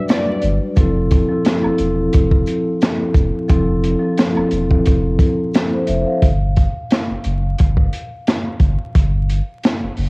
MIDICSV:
0, 0, Header, 1, 5, 480
1, 0, Start_track
1, 0, Tempo, 681818
1, 541, Time_signature, 4, 2, 24, 8
1, 7105, End_track
2, 0, Start_track
2, 0, Title_t, "Violin section"
2, 0, Program_c, 0, 48
2, 64, Note_on_c, 0, 74, 87
2, 279, Note_off_c, 0, 74, 0
2, 7105, End_track
3, 0, Start_track
3, 0, Title_t, "Vibraphone"
3, 0, Program_c, 1, 11
3, 0, Control_c, 1, 64, 127
3, 0, Note_on_c, 1, 54, 70
3, 0, Note_on_c, 1, 55, 80
3, 0, Note_on_c, 1, 62, 73
3, 0, Note_on_c, 1, 66, 71
3, 0, Note_on_c, 1, 71, 85
3, 0, Note_on_c, 1, 74, 79
3, 535, Note_on_c, 1, 53, 88
3, 544, Note_on_c, 1, 60, 86
3, 550, Note_off_c, 1, 55, 0
3, 550, Control_c, 1, 64, 0
3, 552, Note_off_c, 1, 54, 0
3, 552, Note_off_c, 1, 66, 0
3, 553, Note_on_c, 1, 64, 87
3, 555, Note_off_c, 1, 62, 0
3, 556, Note_off_c, 1, 71, 0
3, 557, Note_off_c, 1, 74, 0
3, 562, Note_on_c, 1, 69, 97
3, 662, Control_c, 1, 64, 127
3, 830, Note_off_c, 1, 53, 0
3, 834, Note_off_c, 1, 60, 0
3, 839, Note_off_c, 1, 64, 0
3, 843, Note_off_c, 1, 69, 0
3, 907, Note_on_c, 1, 53, 89
3, 916, Note_on_c, 1, 60, 80
3, 925, Note_on_c, 1, 64, 82
3, 934, Note_on_c, 1, 69, 90
3, 1096, Note_off_c, 1, 53, 0
3, 1101, Note_off_c, 1, 60, 0
3, 1105, Note_off_c, 1, 64, 0
3, 1110, Note_off_c, 1, 69, 0
3, 1147, Note_on_c, 1, 53, 86
3, 1156, Note_on_c, 1, 60, 78
3, 1166, Note_on_c, 1, 64, 94
3, 1175, Note_on_c, 1, 69, 102
3, 1911, Note_off_c, 1, 53, 0
3, 1916, Note_off_c, 1, 60, 0
3, 1921, Note_off_c, 1, 64, 0
3, 1925, Note_off_c, 1, 69, 0
3, 2451, Note_on_c, 1, 53, 91
3, 2460, Note_on_c, 1, 60, 78
3, 2469, Note_on_c, 1, 64, 86
3, 2478, Note_on_c, 1, 69, 99
3, 2748, Note_off_c, 1, 53, 0
3, 2752, Note_off_c, 1, 60, 0
3, 2756, Note_off_c, 1, 64, 0
3, 2761, Note_off_c, 1, 69, 0
3, 2807, Note_on_c, 1, 53, 97
3, 2817, Note_on_c, 1, 60, 80
3, 2825, Note_on_c, 1, 64, 76
3, 2835, Note_on_c, 1, 69, 96
3, 3007, Note_off_c, 1, 53, 0
3, 3011, Note_off_c, 1, 60, 0
3, 3016, Note_off_c, 1, 64, 0
3, 3020, Note_off_c, 1, 69, 0
3, 3058, Note_on_c, 1, 53, 89
3, 3067, Note_on_c, 1, 60, 86
3, 3075, Note_on_c, 1, 64, 90
3, 3085, Note_on_c, 1, 69, 107
3, 3827, Note_off_c, 1, 53, 0
3, 3831, Note_off_c, 1, 60, 0
3, 3835, Note_off_c, 1, 64, 0
3, 3840, Note_off_c, 1, 69, 0
3, 4035, Note_on_c, 1, 72, 64
3, 4040, Note_on_c, 1, 69, 59
3, 4129, Note_off_c, 1, 72, 0
3, 4134, Note_on_c, 1, 76, 75
3, 4138, Note_on_c, 1, 72, 61
3, 4140, Note_off_c, 1, 69, 0
3, 4262, Note_off_c, 1, 76, 0
3, 4264, Note_off_c, 1, 72, 0
3, 4272, Note_on_c, 1, 77, 64
3, 4390, Control_c, 1, 64, 0
3, 4500, Note_off_c, 1, 77, 0
3, 4519, Control_c, 1, 64, 127
3, 7105, End_track
4, 0, Start_track
4, 0, Title_t, "Sub bass"
4, 0, Program_c, 2, 38
4, 305, Note_on_c, 2, 31, 89
4, 415, Note_off_c, 2, 31, 0
4, 543, Note_on_c, 2, 29, 113
4, 859, Note_off_c, 2, 29, 0
4, 1157, Note_on_c, 2, 28, 49
4, 1199, Note_off_c, 2, 28, 0
4, 1265, Note_on_c, 2, 28, 102
4, 1468, Note_off_c, 2, 28, 0
4, 1512, Note_on_c, 2, 29, 102
4, 1712, Note_off_c, 2, 29, 0
4, 2217, Note_on_c, 2, 29, 90
4, 2330, Note_off_c, 2, 29, 0
4, 2463, Note_on_c, 2, 29, 116
4, 2779, Note_off_c, 2, 29, 0
4, 3076, Note_on_c, 2, 28, 50
4, 3119, Note_off_c, 2, 28, 0
4, 3185, Note_on_c, 2, 28, 96
4, 3388, Note_off_c, 2, 28, 0
4, 3432, Note_on_c, 2, 29, 101
4, 3632, Note_off_c, 2, 29, 0
4, 4146, Note_on_c, 2, 29, 91
4, 4255, Note_off_c, 2, 29, 0
4, 4384, Note_on_c, 2, 31, 107
4, 4699, Note_off_c, 2, 31, 0
4, 4997, Note_on_c, 2, 30, 48
4, 5040, Note_off_c, 2, 30, 0
4, 5106, Note_on_c, 2, 30, 95
4, 5309, Note_off_c, 2, 30, 0
4, 5352, Note_on_c, 2, 31, 91
4, 5552, Note_off_c, 2, 31, 0
4, 6058, Note_on_c, 2, 31, 95
4, 6171, Note_off_c, 2, 31, 0
4, 6305, Note_on_c, 2, 31, 108
4, 6620, Note_off_c, 2, 31, 0
4, 6917, Note_on_c, 2, 30, 48
4, 6960, Note_off_c, 2, 30, 0
4, 7026, Note_on_c, 2, 30, 98
4, 7105, Note_off_c, 2, 30, 0
4, 7105, End_track
5, 0, Start_track
5, 0, Title_t, "Drums"
5, 61, Note_on_c, 9, 82, 69
5, 63, Note_on_c, 9, 42, 91
5, 70, Note_on_c, 9, 38, 120
5, 71, Note_on_c, 9, 40, 98
5, 131, Note_off_c, 9, 82, 0
5, 133, Note_off_c, 9, 42, 0
5, 140, Note_off_c, 9, 38, 0
5, 141, Note_off_c, 9, 40, 0
5, 292, Note_on_c, 9, 42, 64
5, 309, Note_on_c, 9, 82, 46
5, 363, Note_off_c, 9, 42, 0
5, 380, Note_off_c, 9, 82, 0
5, 536, Note_on_c, 9, 82, 64
5, 540, Note_on_c, 9, 42, 94
5, 541, Note_on_c, 9, 36, 115
5, 606, Note_off_c, 9, 82, 0
5, 610, Note_off_c, 9, 42, 0
5, 611, Note_off_c, 9, 36, 0
5, 780, Note_on_c, 9, 42, 70
5, 784, Note_on_c, 9, 82, 54
5, 786, Note_on_c, 9, 36, 95
5, 851, Note_off_c, 9, 42, 0
5, 855, Note_off_c, 9, 82, 0
5, 856, Note_off_c, 9, 36, 0
5, 1020, Note_on_c, 9, 42, 86
5, 1023, Note_on_c, 9, 82, 68
5, 1031, Note_on_c, 9, 38, 122
5, 1032, Note_on_c, 9, 40, 104
5, 1090, Note_off_c, 9, 42, 0
5, 1093, Note_off_c, 9, 82, 0
5, 1101, Note_off_c, 9, 38, 0
5, 1102, Note_off_c, 9, 40, 0
5, 1157, Note_on_c, 9, 76, 74
5, 1227, Note_off_c, 9, 76, 0
5, 1255, Note_on_c, 9, 42, 67
5, 1264, Note_on_c, 9, 82, 48
5, 1326, Note_off_c, 9, 42, 0
5, 1334, Note_off_c, 9, 82, 0
5, 1499, Note_on_c, 9, 42, 90
5, 1503, Note_on_c, 9, 82, 71
5, 1510, Note_on_c, 9, 36, 104
5, 1569, Note_off_c, 9, 42, 0
5, 1574, Note_off_c, 9, 82, 0
5, 1580, Note_off_c, 9, 36, 0
5, 1629, Note_on_c, 9, 36, 98
5, 1700, Note_off_c, 9, 36, 0
5, 1737, Note_on_c, 9, 82, 56
5, 1742, Note_on_c, 9, 42, 73
5, 1807, Note_off_c, 9, 82, 0
5, 1812, Note_off_c, 9, 42, 0
5, 1982, Note_on_c, 9, 82, 74
5, 1985, Note_on_c, 9, 42, 93
5, 1991, Note_on_c, 9, 38, 119
5, 1992, Note_on_c, 9, 40, 100
5, 2052, Note_off_c, 9, 82, 0
5, 2055, Note_off_c, 9, 42, 0
5, 2062, Note_off_c, 9, 38, 0
5, 2063, Note_off_c, 9, 40, 0
5, 2214, Note_on_c, 9, 36, 95
5, 2214, Note_on_c, 9, 42, 65
5, 2228, Note_on_c, 9, 82, 47
5, 2284, Note_off_c, 9, 42, 0
5, 2285, Note_off_c, 9, 36, 0
5, 2299, Note_off_c, 9, 82, 0
5, 2456, Note_on_c, 9, 82, 65
5, 2460, Note_on_c, 9, 42, 91
5, 2461, Note_on_c, 9, 36, 116
5, 2527, Note_off_c, 9, 82, 0
5, 2531, Note_off_c, 9, 42, 0
5, 2532, Note_off_c, 9, 36, 0
5, 2701, Note_on_c, 9, 42, 70
5, 2705, Note_on_c, 9, 82, 52
5, 2772, Note_off_c, 9, 42, 0
5, 2775, Note_off_c, 9, 82, 0
5, 2940, Note_on_c, 9, 42, 85
5, 2943, Note_on_c, 9, 82, 68
5, 2950, Note_on_c, 9, 38, 126
5, 2952, Note_on_c, 9, 40, 111
5, 3010, Note_off_c, 9, 42, 0
5, 3013, Note_off_c, 9, 82, 0
5, 3021, Note_off_c, 9, 38, 0
5, 3022, Note_off_c, 9, 40, 0
5, 3076, Note_on_c, 9, 76, 76
5, 3147, Note_off_c, 9, 76, 0
5, 3175, Note_on_c, 9, 42, 68
5, 3183, Note_on_c, 9, 82, 46
5, 3245, Note_off_c, 9, 42, 0
5, 3253, Note_off_c, 9, 82, 0
5, 3314, Note_on_c, 9, 36, 104
5, 3384, Note_off_c, 9, 36, 0
5, 3419, Note_on_c, 9, 42, 90
5, 3422, Note_on_c, 9, 82, 73
5, 3430, Note_on_c, 9, 36, 101
5, 3489, Note_off_c, 9, 42, 0
5, 3493, Note_off_c, 9, 82, 0
5, 3500, Note_off_c, 9, 36, 0
5, 3653, Note_on_c, 9, 36, 99
5, 3656, Note_on_c, 9, 82, 58
5, 3661, Note_on_c, 9, 42, 72
5, 3724, Note_off_c, 9, 36, 0
5, 3727, Note_off_c, 9, 82, 0
5, 3732, Note_off_c, 9, 42, 0
5, 3900, Note_on_c, 9, 82, 73
5, 3904, Note_on_c, 9, 42, 92
5, 3911, Note_on_c, 9, 38, 123
5, 3912, Note_on_c, 9, 40, 98
5, 3970, Note_off_c, 9, 82, 0
5, 3974, Note_off_c, 9, 42, 0
5, 3981, Note_off_c, 9, 38, 0
5, 3982, Note_off_c, 9, 40, 0
5, 4133, Note_on_c, 9, 42, 65
5, 4147, Note_on_c, 9, 82, 47
5, 4204, Note_off_c, 9, 42, 0
5, 4218, Note_off_c, 9, 82, 0
5, 4381, Note_on_c, 9, 42, 85
5, 4382, Note_on_c, 9, 36, 108
5, 4451, Note_off_c, 9, 42, 0
5, 4452, Note_off_c, 9, 36, 0
5, 4622, Note_on_c, 9, 42, 66
5, 4627, Note_on_c, 9, 36, 94
5, 4692, Note_off_c, 9, 42, 0
5, 4697, Note_off_c, 9, 36, 0
5, 4861, Note_on_c, 9, 42, 83
5, 4872, Note_on_c, 9, 38, 118
5, 4873, Note_on_c, 9, 40, 105
5, 4932, Note_off_c, 9, 42, 0
5, 4942, Note_off_c, 9, 38, 0
5, 4943, Note_off_c, 9, 40, 0
5, 5096, Note_on_c, 9, 42, 65
5, 5166, Note_off_c, 9, 42, 0
5, 5339, Note_on_c, 9, 42, 86
5, 5350, Note_on_c, 9, 36, 97
5, 5410, Note_off_c, 9, 42, 0
5, 5421, Note_off_c, 9, 36, 0
5, 5470, Note_on_c, 9, 36, 97
5, 5540, Note_off_c, 9, 36, 0
5, 5582, Note_on_c, 9, 42, 70
5, 5653, Note_off_c, 9, 42, 0
5, 5825, Note_on_c, 9, 42, 85
5, 5831, Note_on_c, 9, 38, 121
5, 5833, Note_on_c, 9, 40, 94
5, 5895, Note_off_c, 9, 42, 0
5, 5902, Note_off_c, 9, 38, 0
5, 5903, Note_off_c, 9, 40, 0
5, 6054, Note_on_c, 9, 42, 65
5, 6055, Note_on_c, 9, 36, 90
5, 6124, Note_off_c, 9, 42, 0
5, 6126, Note_off_c, 9, 36, 0
5, 6301, Note_on_c, 9, 42, 91
5, 6302, Note_on_c, 9, 36, 109
5, 6372, Note_off_c, 9, 42, 0
5, 6373, Note_off_c, 9, 36, 0
5, 6543, Note_on_c, 9, 42, 67
5, 6613, Note_off_c, 9, 42, 0
5, 6781, Note_on_c, 9, 42, 82
5, 6792, Note_on_c, 9, 38, 121
5, 6793, Note_on_c, 9, 40, 103
5, 6852, Note_off_c, 9, 42, 0
5, 6862, Note_off_c, 9, 38, 0
5, 6864, Note_off_c, 9, 40, 0
5, 7016, Note_on_c, 9, 46, 46
5, 7087, Note_off_c, 9, 46, 0
5, 7105, End_track
0, 0, End_of_file